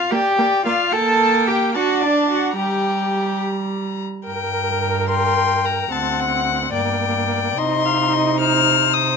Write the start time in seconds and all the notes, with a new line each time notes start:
Already playing: F4 F5
0.11 A#3 G4 D5 G5
0.38 A#3 D5
0.65 A#3 F4 D5 F5
0.92 A#3 A4 G5 A5
1.48 G4 G5
1.74 D4 F#4 F#5 A5
2.03 D4 D5
2.30 F#4 F#5
2.57 G3 G4 G5 A#5
4.26 G2 A#4 G5
5.09 G5 C6
5.65 A#5
5.91 D2 C4 F#5 A5
6.20 F#5
6.74 G2 A#3 D5 G5
7.58 C3 D#4 D#5 C6
7.86 F5
8.13 D#5
8.40 C5 F6
8.94 D#6